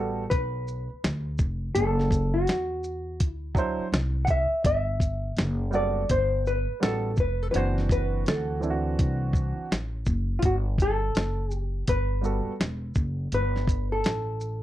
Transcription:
0.00 0.27 A1 medium
0.00 0.21 G3 medium
0.00 0.22 B3 medium
0.00 0.23 F#4 medium
0.00 0.23 A4 medium
0.00 0.30 A4 loud
0.30 0.87 B1 medium
0.30 1.71 B4 loud
0.30 kick medium
0.30 closed hi-hat medium
0.68 shaker soft
0.90 muted upright bass stroke soft
1.04 1.38 D2 medium
1.04 snare loud
1.04 closed hi-hat medium
1.38 1.74 F1 medium
1.38 kick medium
1.38 shaker medium
1.75 2.44 F#1 loud
1.75 2.35 A4 medium
1.75 closed hi-hat loud
1.99 snare soft
2.11 kick medium
2.11 closed hi-hat soft
2.11 shaker medium
2.34 3.28 F#4 medium
2.47 snare loud
2.47 closed hi-hat medium
2.84 shaker soft
3.20 3.76 D2 loud
3.20 kick medium
3.20 closed hi-hat medium
3.28 3.74 E4 medium
3.55 3.83 F#3 medium
3.55 3.84 D4 medium
3.55 3.84 E4 medium
3.55 3.85 C5 loud
3.55 kick medium
3.55 shaker soft
3.79 muted upright bass stroke soft
3.92 4.48 C2 loud
3.92 snare loud
3.92 closed hi-hat medium
4.25 4.29 F#5 medium
4.25 kick medium
4.25 closed hi-hat soft
4.25 shaker soft
4.30 4.65 E5 loud
4.51 muted upright bass stroke soft
4.64 5.33 G1 loud
4.64 5.33 E5 loud
4.64 kick loud
4.64 closed hi-hat medium
5.00 kick loud
5.00 closed hi-hat medium
5.00 shaker medium
5.37 6.06 F#1 medium
5.37 snare loud
5.37 closed hi-hat medium
5.71 6.00 G3 medium
5.71 6.00 B3 medium
5.71 6.01 F#4 medium
5.71 6.02 A4 medium
5.71 shaker soft
5.75 6.11 D5 loud
6.09 6.65 G1 loud
6.09 6.47 C5 medium
6.09 kick medium
6.09 closed hi-hat medium
6.46 6.83 B4 loud
6.46 shaker soft
6.68 muted upright bass stroke soft
6.80 7.16 A1 medium
6.80 7.08 G3 medium
6.80 7.09 B3 medium
6.80 7.10 F#4 medium
6.80 7.16 A4 medium
6.80 7.10 A4 medium
6.80 snare loud
6.80 closed hi-hat medium
7.16 7.52 F1 medium
7.16 7.43 B4 medium
7.16 kick medium
7.16 shaker soft
7.43 7.50 A4 medium
7.51 8.23 F#1 loud
7.51 8.55 E3 medium
7.51 8.56 C4 medium
7.51 8.57 D4 medium
7.51 7.56 B4 medium
7.51 closed hi-hat medium
7.56 8.57 F#4 medium
7.56 7.91 C5 medium
7.78 snare soft
7.89 8.25 B4 medium
7.89 kick loud
7.89 closed hi-hat medium
7.89 shaker medium
8.26 8.95 D2 loud
8.26 9.31 A4 medium
8.26 snare loud
8.26 closed hi-hat medium
8.60 9.64 E3 medium
8.60 9.64 C4 medium
8.60 9.65 D4 medium
8.60 8.71 E4 medium
8.60 shaker soft
8.70 9.69 F#4 medium
8.99 9.54 C2 loud
8.99 kick medium
8.99 closed hi-hat medium
9.33 kick medium
9.33 shaker soft
9.58 muted upright bass stroke soft
9.71 10.05 A1 medium
9.71 snare loud
9.71 closed hi-hat medium
10.06 10.41 F#1 medium
10.06 kick medium
10.06 shaker medium
10.39 10.44 F4 medium
10.39 kick loud
10.39 closed hi-hat medium
10.43 11.12 G1 loud
10.43 10.55 F#4 medium
10.78 11.53 A4 loud
10.78 kick loud
10.78 closed hi-hat medium
10.78 shaker medium
11.15 11.84 F#1 medium
11.15 snare loud
11.15 closed hi-hat medium
11.51 11.85 G4 loud
11.51 shaker soft
11.87 12.43 G1 loud
11.87 13.33 B4 medium
11.87 kick loud
11.87 closed hi-hat medium
12.21 12.50 G3 medium
12.21 12.51 B3 medium
12.21 12.51 F#4 medium
12.21 12.52 A4 medium
12.21 shaker soft
12.46 muted upright bass stroke soft
12.60 12.94 E1 medium
12.60 snare loud
12.60 closed hi-hat medium
12.95 13.30 F#1 medium
12.95 kick medium
12.95 shaker medium
13.32 14.01 G1 loud
13.32 13.87 B4 medium
13.32 closed hi-hat loud
13.56 snare soft
13.68 kick loud
13.68 closed hi-hat medium
13.68 shaker soft
13.92 14.63 A4 medium
14.04 14.63 A1 medium
14.04 snare loud
14.04 closed hi-hat medium
14.41 shaker soft

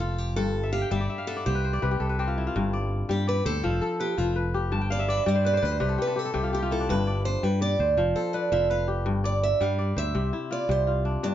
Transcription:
0.00 0.36 F1 medium
0.00 0.41 F3 medium
0.00 0.69 F4 medium
0.00 0.18 A4 medium
0.00 0.45 C5 medium
0.18 0.36 G4 medium
0.36 0.84 G1 medium
0.36 1.51 G2 medium
0.36 0.72 A4 loud
0.63 0.91 E5 medium
0.73 0.90 G4 medium
0.73 0.97 F5 medium
0.82 1.75 G5 medium
0.91 1.07 G1 medium
0.91 1.51 G3 medium
0.91 1.27 G4 medium
0.91 1.09 E5 medium
1.01 1.36 D5 medium
1.10 1.27 E5 medium
1.18 2.18 F5 medium
1.27 1.52 B3 medium
1.27 1.46 A4 medium
1.27 2.34 E5 medium
1.37 1.73 D5 medium
1.46 1.78 C2 medium
1.46 2.15 G4 medium
1.46 1.64 C5 medium
1.55 1.82 B4 medium
1.64 1.88 C5 medium
1.73 2.73 D5 medium
1.82 1.98 C2 medium
1.82 2.60 C3 medium
1.82 2.09 B4 medium
1.91 2.19 G4 medium
2.00 2.47 C2 medium
2.00 3.32 A4 medium
2.09 3.32 B4 medium
2.19 3.99 C4 medium
2.19 3.60 G4 medium
2.28 2.46 F4 medium
2.38 3.70 E4 medium
2.47 3.98 F4 medium
2.56 3.02 G1 medium
2.56 3.69 G2 medium
2.73 3.27 D5 medium
3.09 3.41 G2 medium
3.09 3.69 G3 medium
3.09 3.28 G4 medium
3.27 3.46 B4 medium
3.27 4.38 D5 medium
3.45 3.61 D2 medium
3.45 3.96 A4 loud
3.45 4.06 C5 medium
3.64 3.80 F1 loud
3.64 4.16 F3 loud
3.82 5.13 A4 medium
4.00 4.18 G4 medium
4.00 4.35 B4 medium
4.18 4.72 F1 medium
4.18 4.77 F3 medium
4.18 4.36 F4 medium
4.36 5.41 B4 medium
4.54 5.96 G4 medium
4.72 5.19 G1 medium
4.72 5.86 G2 medium
4.72 5.59 A5 medium
4.81 5.75 G5 medium
4.90 5.10 D5 medium
4.90 5.23 F5 medium
5.00 5.17 E5 medium
5.08 5.28 B4 medium
5.08 5.26 D5 medium
5.17 6.21 E5 medium
5.26 5.58 G2 medium
5.26 5.86 G3 medium
5.26 6.37 D5 medium
5.26 5.45 D5 medium
5.35 5.53 C5 medium
5.45 5.62 B4 medium
5.45 5.56 D5 medium
5.53 5.71 C5 medium
5.53 5.65 D5 medium
5.62 5.78 D2 loud
5.62 5.80 B4 medium
5.62 6.01 C5 loud
5.71 6.90 C5 medium
5.80 5.97 C2 loud
5.80 6.33 C3 loud
5.80 6.40 B4 medium
5.89 6.07 A4 medium
5.98 6.16 G4 medium
5.98 6.19 B4 medium
6.07 6.25 A4 medium
6.16 6.34 G4 medium
6.16 6.55 A4 medium
6.25 7.57 A4 medium
6.34 6.91 C2 medium
6.34 6.94 C3 medium
6.34 6.53 G4 medium
6.43 6.62 F4 medium
6.53 7.94 G4 medium
6.53 6.72 G4 medium
6.62 8.14 F4 medium
6.71 8.04 E4 medium
6.71 6.89 A4 medium
6.80 8.48 D4 medium
6.89 7.36 G1 medium
6.89 8.03 G2 medium
6.89 7.25 B4 loud
7.07 7.61 D5 medium
7.25 7.44 C5 medium
7.43 7.75 G2 medium
7.43 8.03 G3 medium
7.43 7.62 B4 loud
7.61 8.72 D5 medium
7.61 7.95 D5 medium
7.79 7.95 D2 medium
7.79 8.40 C5 medium
7.97 8.13 F1 loud
7.97 8.51 F3 loud
8.16 9.48 A4 medium
8.16 8.33 C5 medium
8.33 8.70 B4 medium
8.33 8.52 D5 loud
8.52 9.06 F1 medium
8.52 9.11 F3 medium
8.52 8.70 E5 medium
8.70 9.93 B4 medium
8.70 8.87 F5 medium
8.88 10.29 G4 medium
9.06 9.53 G1 medium
9.06 10.20 G2 medium
9.24 9.78 D5 medium
9.24 9.43 D5 medium
9.43 9.61 E5 loud
9.61 9.92 G2 medium
9.61 10.20 G3 medium
9.61 9.97 F5 loud
9.79 10.89 D5 medium
9.96 10.12 D2 medium
9.96 11.15 C5 medium
9.96 10.52 E5 loud
10.15 10.31 C2 loud
10.15 10.68 C3 medium
10.33 10.93 E4 medium
10.51 10.87 F4 medium
10.51 10.70 D5 medium
10.69 11.16 C2 medium
10.69 11.28 C3 medium
10.69 10.87 C5 medium
10.87 11.35 F4 medium
11.05 11.35 D4 medium
11.23 11.35 G2 medium
11.23 11.35 D4 medium

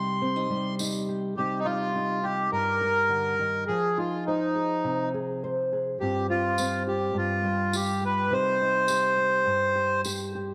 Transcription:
0.00 1.36 C3 medium
0.00 0.49 G3 medium
0.00 0.21 D#4 medium
0.00 1.08 G4 medium
0.00 0.75 C6 medium
0.22 0.36 C4 medium
0.36 0.79 D#4 soft
0.50 1.37 G3 medium
0.79 1.34 D#4 medium
0.79 tambourine medium
1.09 1.34 G4 medium
1.37 2.53 C3 medium
1.37 3.69 G3 medium
1.37 1.65 D#4 medium
1.37 1.60 G4 medium
1.59 1.66 D#4 medium
1.65 1.95 D#4 medium
1.65 2.25 F4 medium
1.96 2.23 D#4 medium
2.23 3.65 D#4 soft
2.23 2.50 G4 medium
2.52 3.68 G2 medium
2.52 3.64 A#4 loud
2.81 3.65 G4 medium
3.09 3.39 D3 medium
3.39 3.68 D#3 medium
3.68 5.97 F3 medium
3.68 3.98 G#4 medium
3.97 5.96 D#4 medium
3.97 4.24 F4 medium
4.26 5.09 D#4 medium
4.26 5.43 C5 medium
4.55 5.13 G#4 medium
4.84 5.96 C3 medium
5.14 5.71 G#4 medium
5.44 5.97 C5 medium
5.73 5.97 G#4 medium
6.00 7.13 G2 medium
6.00 7.44 G3 medium
6.00 6.28 C4 medium
6.00 6.86 F4 medium
6.00 6.27 G4 medium
6.30 6.58 C4 medium
6.30 6.83 F4 medium
6.58 7.16 C4 medium
6.58 tambourine loud
6.87 7.12 F4 soft
6.87 7.17 G4 medium
7.14 8.30 G2 medium
7.14 7.76 F4 medium
7.44 8.30 G3 medium
7.73 8.27 F4 medium
7.73 8.04 G4 medium
7.73 tambourine medium
8.01 8.32 G4 medium
8.05 8.33 B4 medium
8.30 9.46 C3 medium
8.30 10.54 G3 medium
8.30 8.60 D#4 medium
8.30 8.89 G4 medium
8.30 10.01 C5 loud
8.61 10.54 D#4 medium
8.88 9.16 G4 medium
8.88 tambourine loud
9.17 9.74 G4 medium
9.46 10.54 G2 medium
9.75 10.04 G4 medium
10.05 10.34 G4 medium
10.05 tambourine medium
10.35 10.54 G4 medium

